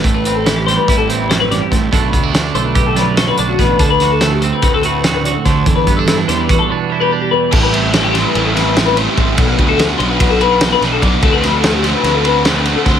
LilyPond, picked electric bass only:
\new Staff \with { instrumentName = "Picked electric bass" } { \clef bass \time 9/8 \key a \dorian \tempo 4. = 97 a,,2 a,,2 a,,8 | b,,8 d,4 b,,8 b,,4. b,,8 a,,8 | d,2 d,2 d,8 | e,8 g,4 e,8 e,16 r2 r16 |
a,,2 a,,2 a,,8 | b,,8 d,4 b,,8 b,,4. b,,8 b,,8 | d,2 d,2 d,8 | }